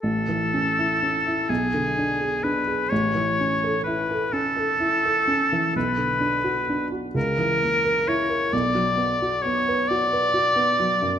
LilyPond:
<<
  \new Staff \with { instrumentName = "Oboe" } { \time 6/8 \key a \major \tempo 4. = 43 a'4. gis'4 b'8 | cis''4 b'8 a'4. | b'4 r8 ais'4 cis''8 | d''4 cis''8 d''4. | }
  \new Staff \with { instrumentName = "Grand piano" } { \time 6/8 \key a \major a,,16 e16 cis'16 e'16 cis'16 e'16 b,,16 d16 d'16 gis'16 d'16 gis'16 | a,,16 e16 cis'16 a'16 e'16 a'16 cis'16 a'16 e'16 a'16 cis'16 e16 | b,,16 d16 d'16 fis'16 d'16 fis'16 cis,16 e16 ais16 ais'16 e'16 ais'16 | b,,16 fis16 b16 fis'16 b16 b'16 fis'16 b'16 fis'16 b16 fis16 fis,16 | }
>>